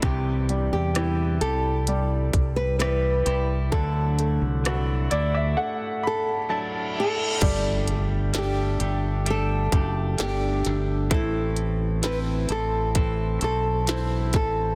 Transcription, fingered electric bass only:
\new Staff \with { instrumentName = "Fingered electric bass" } { \clef bass \time 4/4 \key g \major \tempo 4 = 65 c,8. e,8. c,4 c,4 c,8 | d,8. c,8. d,8 r2 | g,,4. g,,4 fis,,8 g,,8 g,,8 | a,,4. a,,4 b,,4 a,,8 | }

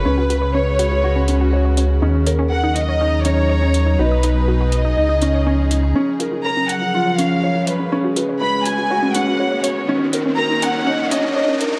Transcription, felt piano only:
\new Staff \with { instrumentName = "Felt piano" } { \time 4/4 \key des \mixolydian \tempo 4 = 122 des'8 ces''8 ces''8 r8 ges'8 des'8 des''8 r8 | des'8 bes'8 bes'8 r8 ees'8 des'8 des''8 r8 | dis'8 b'8 b'8 r8 ees'8 des'8 des'8 r8 | des'8 bes'8 bes'8 r8 f'8 des'8 des''8 r8 |
des'8 ces''8 ces''8 r8 ges'8 des'8 des''8 r8 | des'8 bes'8 bes'8 r8 ees'8 des'8 des''8 r8 | }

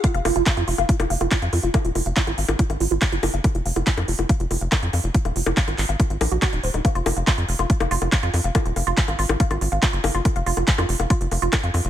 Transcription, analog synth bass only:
\new Staff \with { instrumentName = "Analog synth bass" } { \clef bass \time 4/4 \key f \phrygian \tempo 4 = 141 r16 f,,16 f,,16 f,,16 r16 f,16 f,,16 f,,16 r16 f,,16 f,,16 f,,16 r16 f,16 f,16 f,,16 | r16 ees,,16 f,,16 f,,16 r16 aes,,16 aes,,16 aes,,16 r16 aes,,16 aes,,16 aes,,16 r16 ges,,16 ges,,16 ges,,16 | r16 f,,16 f,,16 f,,16 r16 f,16 f,,16 f,,16 r16 f,,16 f,,16 f,,16 r16 f,16 f,16 f,,16 | r16 ees,,16 f,,16 f,,16 r16 aes,,16 aes,,16 aes,,16 r16 aes,,16 bes,,16 bes,,16 r16 ees,,16 ees,,16 ees,,16 |
r16 f,,16 f,,16 f,,16 r16 f,16 f,,16 f,,16 r16 f,,16 f,,16 f,,16 r16 f,16 f,16 f,,16 | r16 ees,,16 f,,16 f,,16 r16 aes,,16 aes,,16 aes,,16 r16 aes,,16 aes,,16 aes,,16 r16 ges,,16 ges,,16 ges,,16 | r16 f,,16 f,,16 f,,16 r16 f,16 f,,16 f,,16 r16 f,,16 f,,16 f,,16 r16 f,16 f,16 f,,16 | }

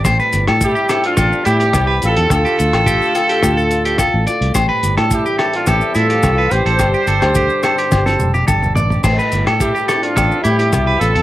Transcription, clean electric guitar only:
\new Staff \with { instrumentName = "Clean electric guitar" } { \time 4/4 \key a \minor \tempo 4 = 107 c''16 b'8 a'8 g'16 a'8 a'8 e'16 g'8 b'8 a'16~ | a'16 g'16 r8 g'8 a'16 g'8 a'8 g'16 a'8 d''8 | c''16 b'8 a'8 g'16 a'8 a'8 e'16 g'8 b'8 a'16~ | a'16 g'16 a'8 g'8 a'16 g'8 a'8 g'16 a'8 d''8 |
c''16 b'8 a'8 g'16 a'8 a'8 e'16 g'8 b'8 a'16 | }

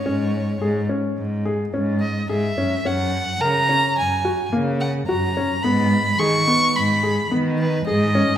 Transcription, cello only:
\new Staff \with { instrumentName = "Cello" } { \clef bass \time 5/4 \key cis \dorian \tempo 4 = 108 gis,4 gis,8 r8 gis,4 gis,4 gis,8 fis,8 | fis,4 cis8 r8 fis,4 cis4 fis,4 | gis,4 dis8 r8 gis,4 dis4 gis,4 | }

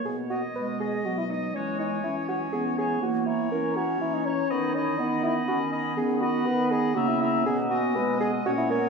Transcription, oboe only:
\new Staff \with { instrumentName = "Oboe" } { \time 3/4 \key b \major \tempo 4 = 121 r8 dis''4 dis''4 dis''8 | cis''8 cis''4 cis''4 cis''8 | r8 cis''4 cis''4 cis''8 | dis''8 dis''4 dis''4 dis''8 |
r8 dis''4 dis''8 e''8 e''8 | r8 dis''4 dis''8 cis''8 cis''8 | }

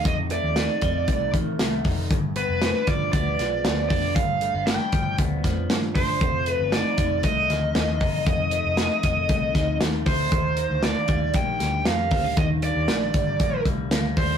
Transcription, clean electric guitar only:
\new Staff \with { instrumentName = "Clean electric guitar" } { \time 4/4 \key f \mixolydian \tempo 4 = 117 <f, ees a ees'>8 a8 ees'8 ees8 a8 ees8 a8 ees'8 | g,8 b8 c'16 d'16 f8 b8 f8 b8 d'8 | g,8 a16 b16 d'8 f8 b8 f4 d'8 | f,8 a8 ees'8 ees8 a8 ees8 a8 ees'8 |
f,8 a8 ees'8 ees8 a8 ees8 a8 ees'8 | ees8 bes8 d'8 g8 bes8 g8 bes8 c'16 d'16 | ees8 bes8 d'8 g8 bes8 g8 bes8 d'8 | }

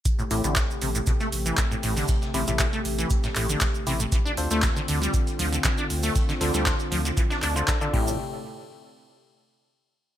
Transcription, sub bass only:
\new Staff \with { instrumentName = "Sub bass" } { \clef bass \time 4/4 \key a \minor \tempo 4 = 118 r8 a,,16 a,,8 r16 a,,8 r8 a,,8 r8 a,,8 | r8 a,,16 a,,8 r16 a,,8 r8 a,,8 r8 a,,8 | r8 d,16 d,8 r16 d,8 r8 d,8 r8 d,8 | r8 d,16 d,8 r16 d,8 r8 d,8 r8 a,,8 |
r1 | }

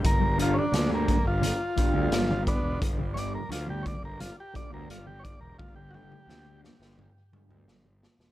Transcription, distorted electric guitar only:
\new Staff \with { instrumentName = "Distorted electric guitar" } { \clef bass \time 4/4 \key c \major \tempo 4 = 86 r8 <g, d g>16 r8 <g, d g>16 r4 <g, d g>16 <g, d g>16 r4 | r8 <g, d g>16 r8 <g, d g>16 r4 <g, d g>16 <g, d g>16 r4 | r8 <g, d g>16 r8 <g, d g>16 r4 <g, d g>16 <g, d g>16 r4 | }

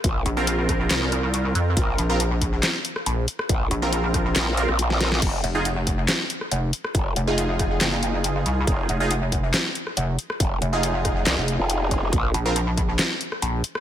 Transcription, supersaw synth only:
\new Staff \with { instrumentName = "Supersaw synth" } { \time 4/4 \key f \phrygian \tempo 4 = 139 r8. <c' f' bes'>2.~ <c' f' bes'>16~ | <c' f' bes'>8. <c' f' bes'>16 r2. | r8. <c' f' bes'>4.~ <c' f' bes'>16 <c' f' bes'>16 r4 r16 | r8. <ees' f' aes'>16 r2. |
r8. <ees' f' aes'>2.~ <ees' f' aes'>16~ | <ees' f' aes'>8. <ees' f' aes'>16 r2. | r8. <ees' f' aes'>2.~ <ees' f' aes'>16 | r8. <c' f' bes'>16 r2. | }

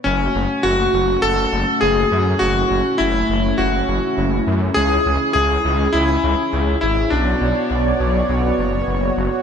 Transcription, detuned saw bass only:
\new Staff \with { instrumentName = "Detuned saw bass" } { \clef bass \time 4/4 \key fis \minor \tempo 4 = 102 fis,,8 fis,,8 fis,,8 fis,,8 fis,,8 fis,,8 fis,,8 fis,8 | fis,,8 fis,,8 fis,,8 fis,,8 fis,,8 fis,,8 fis,,8 fis,8 | cis,8 cis,8 cis,8 cis,8 cis,8 cis,8 cis,8 gis,,8 | b,,8 b,,8 b,,8 b,,8 b,,8 fis,,8 fis,,8 fis,,8 | }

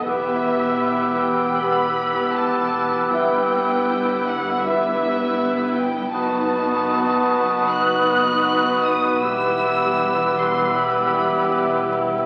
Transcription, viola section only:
\new Staff \with { instrumentName = "Viola section" } { \time 4/4 \key e \minor \tempo 4 = 78 <b e'>2 <b e'>2 | <b e'>2 <b e'>2 | <b dis'>2 <b dis'>2 | <g e'>2 <g e'>2 | }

